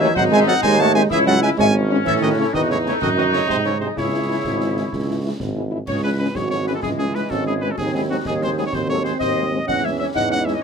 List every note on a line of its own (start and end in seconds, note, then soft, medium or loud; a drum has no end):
0.00 0.17 E3 loud
0.00 0.11 D#4 loud
0.00 0.07 G#4 loud
0.00 0.15 C#5 loud
0.00 0.15 E5 loud
0.15 0.56 G#1 loud
0.15 0.31 F#3 loud
0.15 1.07 D#4 loud
0.15 0.22 C5 loud
0.15 0.21 D#5 loud
0.15 0.24 F#5 loud
0.15 concert bass drum medium
0.15 snare medium
0.31 0.37 D#3 medium
0.31 0.37 G#3 medium
0.31 0.46 G#3 loud
0.31 0.37 C4 medium
0.31 0.47 C5 loud
0.31 0.47 E5 loud
0.31 0.40 G#5 loud
0.46 0.53 D#3 medium
0.46 0.54 F#3 loud
0.46 0.53 G#3 medium
0.46 0.53 C4 medium
0.46 0.54 A4 loud
0.46 0.53 D#5 loud
0.46 0.62 F#5 loud
0.62 1.03 D#2 loud
0.62 0.78 G#3 loud
0.62 0.77 C5 loud
0.62 0.69 D#5 loud
0.62 0.81 G#5 loud
0.62 concert bass drum medium
0.62 snare medium
0.79 0.85 D#3 medium
0.79 0.85 G#3 medium
0.79 0.97 A3 loud
0.79 0.85 C4 medium
0.79 0.94 C#5 loud
0.79 0.94 F#5 loud
0.79 0.94 A5 loud
0.79 snare medium
0.94 1.00 D#3 loud
0.94 1.00 G#3 medium
0.94 1.11 G#3 loud
0.94 1.00 C4 medium
0.94 1.02 C5 loud
0.94 1.01 E5 loud
0.94 1.02 G#5 loud
0.94 snare medium
1.09 1.51 C#2 medium
1.09 1.19 E3 loud
1.09 1.55 E4 loud
1.09 1.18 G#4 loud
1.09 1.26 C#5 loud
1.09 1.19 E5 loud
1.09 concert bass drum medium
1.09 snare medium
1.26 1.32 E3 medium
1.26 1.42 F#3 loud
1.26 1.32 G#3 medium
1.26 1.32 C#4 medium
1.26 1.33 A4 loud
1.26 1.32 D#5 loud
1.26 1.42 F#5 loud
1.42 1.48 E3 medium
1.42 1.48 G#3 medium
1.42 1.50 G#3 loud
1.42 1.48 C#4 medium
1.42 1.50 B4 loud
1.42 1.48 E5 loud
1.42 1.50 G#5 loud
1.42 snare medium
1.57 1.98 G#1 loud
1.57 1.73 G#3 loud
1.57 2.54 C#4 loud
1.57 1.65 C#5 loud
1.57 1.65 E5 loud
1.57 1.74 G#5 loud
1.57 concert bass drum medium
1.57 snare medium
1.75 1.81 E3 medium
1.75 1.80 G#3 medium
1.75 1.81 C#4 medium
1.90 1.96 E3 medium
1.90 1.96 G#3 medium
1.90 1.96 C#4 loud
2.04 2.46 A2 medium
2.04 2.20 E3 loud
2.04 2.21 A4 loud
2.04 2.11 C#5 loud
2.04 2.14 E5 loud
2.04 concert bass drum medium
2.04 snare medium
2.04 crash soft
2.21 2.36 D#3 loud
2.21 2.28 E3 medium
2.21 2.28 A3 medium
2.21 2.28 C#4 medium
2.21 2.39 F#4 loud
2.21 2.37 B4 loud
2.21 2.30 D#5 loud
2.37 2.44 C#3 loud
2.37 2.44 E3 medium
2.37 2.44 A3 medium
2.37 2.43 C#4 medium
2.37 2.54 E4 loud
2.37 2.53 A4 medium
2.41 2.47 C#5 medium
2.53 2.94 E2 medium
2.53 2.61 D#3 loud
2.53 3.96 D#4 loud
2.53 2.70 F#4 loud
2.53 2.60 B4 loud
2.53 2.62 D#5 loud
2.53 concert bass drum medium
2.53 snare medium
2.69 2.76 C#3 medium
2.69 2.75 E3 medium
2.69 2.75 A3 medium
2.69 2.75 C#4 medium
2.69 2.77 E4 medium
2.69 2.77 A4 medium
2.69 2.78 C#5 loud
2.69 snare medium
2.85 2.93 C#3 medium
2.85 2.91 E3 medium
2.85 2.91 A3 medium
2.85 2.91 C#4 medium
2.85 2.94 E4 medium
2.85 3.00 A4 medium
2.85 2.94 C#5 medium
2.85 snare medium
3.01 3.42 F#2 medium
3.01 3.09 D#3 loud
3.01 3.09 F#4 loud
3.01 3.07 A4 loud
3.01 3.09 D#5 loud
3.01 concert bass drum medium
3.01 snare medium
3.16 3.24 D#3 medium
3.16 3.23 F#3 medium
3.16 3.23 A3 medium
3.16 3.23 D#4 medium
3.16 3.32 F#4 medium
3.16 3.22 B4 medium
3.16 3.25 D#5 medium
3.32 3.40 C#3 medium
3.32 3.38 F#3 medium
3.32 3.39 A3 medium
3.32 3.39 D#4 medium
3.32 3.40 E4 medium
3.32 3.48 A4 medium
3.32 3.48 C#5 loud
3.32 snare medium
3.47 3.89 G#2 medium
3.47 3.63 C3 medium
3.47 3.55 D#4 medium
3.47 3.53 G#4 medium
3.47 3.57 C5 loud
3.47 concert bass drum medium
3.47 snare medium
3.64 3.79 C#3 medium
3.64 3.71 F#3 medium
3.64 3.71 G#3 medium
3.64 3.71 D#4 medium
3.64 3.73 E4 medium
3.64 3.70 A4 medium
3.64 3.80 C#5 medium
3.80 3.87 C3 medium
3.80 3.87 F#3 medium
3.80 3.87 G#3 medium
3.80 3.96 D#4 medium
3.80 3.87 D#4 medium
3.80 3.94 G#4 medium
3.80 3.88 C5 medium
3.95 4.37 C#2 medium
3.95 5.35 C#3 medium
3.95 5.59 E4 medium
3.95 5.36 E4 medium
3.95 5.35 G#4 medium
3.95 5.36 C#5 medium
3.95 concert bass drum medium
3.95 snare medium
4.13 4.19 E3 medium
4.13 4.19 G#3 medium
4.13 4.19 E4 medium
4.29 4.35 E3 medium
4.29 4.35 G#3 medium
4.29 4.35 E4 medium
4.44 4.85 G#1 medium
4.44 concert bass drum medium
4.44 snare medium
4.60 4.66 E3 medium
4.60 4.66 G#3 medium
4.60 4.67 E4 medium
4.60 snare medium
4.76 4.82 E3 medium
4.76 4.82 G#3 medium
4.76 4.82 E4 medium
4.76 snare medium
4.92 5.32 C#2 medium
4.92 concert bass drum medium
4.92 snare medium
5.08 5.14 E3 medium
5.08 5.14 G#3 medium
5.08 5.14 E4 medium
5.24 5.30 E3 medium
5.24 5.30 G#3 medium
5.24 5.30 E4 medium
5.40 5.80 G#1 medium
5.40 concert bass drum medium
5.40 snare medium
5.56 5.62 E3 medium
5.56 5.62 G#3 medium
5.56 5.62 E4 medium
5.71 5.77 E3 medium
5.71 5.77 G#3 medium
5.71 5.77 E4 medium
5.87 6.27 C#2 medium
5.87 7.74 E3 medium
5.87 7.74 G#3 medium
5.87 6.02 G#4 medium
5.87 6.02 C#5 loud
5.87 5.96 C#5 loud
5.87 concert bass drum medium
5.87 snare medium
5.87 crash medium
6.03 6.10 E3 medium
6.03 6.10 G#3 medium
6.03 6.10 C#4 medium
6.03 6.09 G#4 medium
6.03 6.18 B4 medium
6.03 6.11 B4 loud
6.19 6.25 E3 medium
6.19 6.25 G#3 medium
6.19 6.25 C#4 medium
6.19 6.26 G#4 medium
6.19 6.38 B4 medium
6.19 6.27 B4 medium
6.34 6.74 G#1 medium
6.34 6.84 F#4 medium
6.34 6.40 G#4 medium
6.34 6.43 C#5 medium
6.34 6.50 C#5 medium
6.34 concert bass drum medium
6.34 snare medium
6.50 6.57 E3 medium
6.50 6.57 G#3 medium
6.50 6.57 C#4 medium
6.50 6.57 A4 medium
6.50 6.65 C#5 loud
6.50 6.58 C#5 medium
6.50 snare medium
6.65 6.73 E3 medium
6.65 6.73 G#3 medium
6.65 6.73 C#4 medium
6.65 6.69 G#4 medium
6.65 6.71 B4 medium
6.65 snare medium
6.73 6.77 F#4 medium
6.73 6.78 A4 medium
6.73 6.79 A4 medium
6.81 7.22 C#2 medium
6.81 6.87 E4 loud
6.81 7.30 E4 medium
6.81 6.89 G#4 loud
6.81 6.90 G#4 medium
6.81 concert bass drum medium
6.81 snare medium
6.98 7.04 E3 medium
6.98 7.04 G#3 medium
6.98 7.04 C#4 medium
6.98 7.04 E4 medium
6.98 7.05 G#4 medium
6.98 7.16 G#4 medium
7.14 7.20 E3 medium
7.14 7.20 G#3 medium
7.14 7.20 C#4 medium
7.14 7.20 G#4 medium
7.14 7.32 B4 medium
7.14 7.22 B4 medium
7.14 snare medium
7.29 7.70 G#1 medium
7.29 7.75 C#4 medium
7.29 7.44 F#4 medium
7.29 7.46 A4 medium
7.29 concert bass drum medium
7.29 snare medium
7.46 7.52 E3 medium
7.46 7.52 G#3 medium
7.46 7.52 C#4 medium
7.46 7.61 E4 medium
7.46 7.61 G#4 medium
7.46 7.54 G#4 medium
7.61 7.68 E3 medium
7.61 7.68 G#3 medium
7.61 7.67 C#4 medium
7.61 7.70 G#4 medium
7.61 7.73 B4 medium
7.61 7.70 B4 medium
7.71 7.78 F#4 medium
7.71 7.77 A4 medium
7.71 7.78 A4 medium
7.78 8.18 D#2 medium
7.78 9.68 F#3 medium
7.78 9.68 C4 medium
7.78 8.22 C4 medium
7.78 7.95 D#4 medium
7.78 7.93 G#4 medium
7.78 7.93 G#4 loud
7.78 concert bass drum medium
7.78 snare medium
7.78 crash soft
7.93 7.99 F#3 medium
7.93 7.99 G#3 medium
7.93 7.99 C4 medium
7.93 8.09 E4 medium
7.93 8.01 G#4 medium
7.93 8.02 G#4 medium
8.09 8.15 F#3 medium
8.09 8.15 G#3 medium
8.09 8.15 C4 medium
8.09 8.25 D#4 medium
8.09 8.17 F#4 medium
8.09 8.25 F#4 medium
8.25 8.65 D#2 medium
8.25 8.75 D#4 medium
8.25 8.33 D#4 medium
8.25 8.42 G#4 medium
8.25 8.34 G#4 loud
8.25 concert bass drum medium
8.25 snare medium
8.41 8.47 F#3 medium
8.41 8.47 G#3 medium
8.41 8.47 C4 medium
8.41 8.56 G#4 medium
8.41 8.58 C5 medium
8.41 8.50 C5 loud
8.41 snare medium
8.57 8.63 F#3 medium
8.57 8.63 G#3 medium
8.57 8.63 C4 medium
8.57 8.61 E4 medium
8.57 8.61 G#4 medium
8.57 8.65 G#4 medium
8.57 snare medium
8.66 8.69 A4 medium
8.66 8.73 C#5 medium
8.66 8.76 C#5 medium
8.72 9.12 D#2 medium
8.72 9.66 C4 medium
8.72 8.78 G#4 medium
8.72 8.81 C5 medium
8.72 8.89 C5 medium
8.72 concert bass drum medium
8.72 snare medium
8.88 8.94 F#3 medium
8.88 8.94 G#3 medium
8.88 8.94 C4 medium
8.88 9.03 A4 medium
8.88 9.04 C#5 loud
8.88 9.04 C#5 medium
9.03 9.10 F#3 medium
9.03 9.10 G#3 medium
9.03 9.10 C4 medium
9.03 9.19 G#4 medium
9.03 9.19 C5 medium
9.03 9.13 C5 medium
9.03 snare medium
9.18 9.60 D#2 medium
9.18 9.45 C5 loud
9.18 9.64 D#5 medium
9.18 9.65 D#5 loud
9.18 concert bass drum medium
9.18 snare medium
9.36 9.42 F#3 medium
9.36 9.42 G#3 medium
9.36 9.42 C4 medium
9.52 9.57 F#3 medium
9.52 9.57 G#3 medium
9.52 9.57 C4 medium
9.67 10.08 E2 medium
9.67 10.63 E3 medium
9.67 10.12 C#4 medium
9.67 10.63 C#4 medium
9.67 9.82 D#5 loud
9.67 9.87 F#5 loud
9.67 9.83 F#5 loud
9.67 concert bass drum medium
9.67 snare medium
9.67 crash soft
9.82 9.89 E3 medium
9.82 9.88 G#3 medium
9.82 9.89 C#4 medium
9.82 9.89 C#5 medium
9.82 9.98 E5 medium
9.82 9.99 E5 medium
9.99 10.05 E3 medium
9.99 10.04 G#3 medium
9.99 10.05 C#4 medium
9.99 10.05 C#5 medium
9.99 10.06 E5 medium
9.99 10.07 E5 loud
10.15 10.55 E2 medium
10.15 10.63 D#4 medium
10.15 10.21 D#5 loud
10.15 10.29 F#5 loud
10.15 10.30 F#5 loud
10.15 concert bass drum medium
10.15 snare medium
10.30 10.36 E3 medium
10.30 10.37 G#3 medium
10.30 10.36 C#4 medium
10.30 10.38 D#5 medium
10.30 10.38 F#5 medium
10.30 10.47 F#5 loud
10.30 snare medium
10.45 10.52 E3 medium
10.45 10.52 G#3 medium
10.45 10.52 C#4 medium
10.45 10.54 C#5 medium
10.45 10.55 E5 medium
10.45 10.50 E5 medium
10.45 snare medium
10.54 10.59 B4 medium
10.54 10.58 D#5 medium
10.54 10.61 D#5 medium